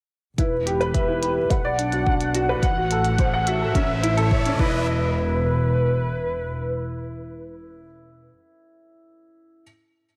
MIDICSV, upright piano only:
0, 0, Header, 1, 2, 480
1, 0, Start_track
1, 0, Tempo, 560748
1, 331, Time_signature, 4, 2, 24, 8
1, 8700, End_track
2, 0, Start_track
2, 0, Title_t, "Upright piano"
2, 0, Program_c, 0, 0
2, 330, Note_on_c, 0, 64, 69
2, 445, Note_off_c, 0, 64, 0
2, 492, Control_c, 0, 64, 127
2, 568, Note_on_c, 0, 67, 85
2, 684, Note_off_c, 0, 67, 0
2, 689, Note_on_c, 0, 71, 86
2, 804, Note_off_c, 0, 71, 0
2, 804, Note_on_c, 0, 76, 71
2, 921, Note_off_c, 0, 76, 0
2, 925, Note_on_c, 0, 64, 65
2, 1042, Note_off_c, 0, 64, 0
2, 1047, Note_on_c, 0, 67, 67
2, 1163, Note_off_c, 0, 67, 0
2, 1292, Note_on_c, 0, 71, 72
2, 1304, Control_c, 0, 64, 0
2, 1406, Note_off_c, 0, 71, 0
2, 1410, Note_on_c, 0, 74, 92
2, 1469, Control_c, 0, 64, 127
2, 1525, Note_off_c, 0, 74, 0
2, 1528, Note_on_c, 0, 62, 65
2, 1644, Note_off_c, 0, 62, 0
2, 1652, Note_on_c, 0, 66, 65
2, 1766, Note_off_c, 0, 66, 0
2, 1774, Note_on_c, 0, 62, 72
2, 1887, Note_off_c, 0, 62, 0
2, 2010, Note_on_c, 0, 66, 95
2, 2125, Note_off_c, 0, 66, 0
2, 2133, Note_on_c, 0, 71, 89
2, 2246, Note_off_c, 0, 71, 0
2, 2255, Note_on_c, 0, 78, 78
2, 2262, Control_c, 0, 64, 0
2, 2367, Note_off_c, 0, 78, 0
2, 2377, Note_on_c, 0, 66, 69
2, 2397, Control_c, 0, 64, 127
2, 2488, Note_off_c, 0, 66, 0
2, 2498, Note_on_c, 0, 69, 72
2, 2609, Note_off_c, 0, 69, 0
2, 2736, Note_on_c, 0, 72, 72
2, 2848, Note_off_c, 0, 72, 0
2, 2855, Note_on_c, 0, 78, 96
2, 2967, Note_off_c, 0, 78, 0
2, 2976, Note_on_c, 0, 66, 75
2, 3087, Note_off_c, 0, 66, 0
2, 3094, Note_on_c, 0, 69, 68
2, 3207, Note_off_c, 0, 69, 0
2, 3211, Note_on_c, 0, 61, 76
2, 3221, Control_c, 0, 64, 0
2, 3325, Note_off_c, 0, 61, 0
2, 3354, Control_c, 0, 64, 127
2, 3451, Note_on_c, 0, 64, 97
2, 3565, Note_off_c, 0, 64, 0
2, 3571, Note_on_c, 0, 69, 101
2, 3685, Note_off_c, 0, 69, 0
2, 3692, Note_on_c, 0, 73, 80
2, 3806, Note_off_c, 0, 73, 0
2, 3816, Note_on_c, 0, 61, 74
2, 3928, Note_off_c, 0, 61, 0
2, 3937, Note_on_c, 0, 64, 101
2, 3943, Control_c, 0, 64, 0
2, 4035, Control_c, 0, 64, 127
2, 4183, Control_c, 0, 64, 0
2, 4351, Control_c, 0, 64, 127
2, 4381, Note_off_c, 0, 64, 0
2, 8243, Control_c, 0, 64, 0
2, 8700, End_track
0, 0, End_of_file